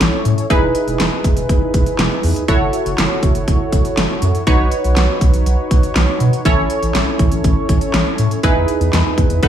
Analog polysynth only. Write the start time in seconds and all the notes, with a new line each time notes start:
Already playing: C#4 E4 A4 C#5
0.50 D#4 E4 G#4 B4
2.48 E4 F#4 A4 C#5
4.47 D#4 F#4 B4 C#5
6.46 C#4 E4 A4 C#5
8.44 D#4 E4 G#4 B4
9.43 D#4 F#4 A4 B4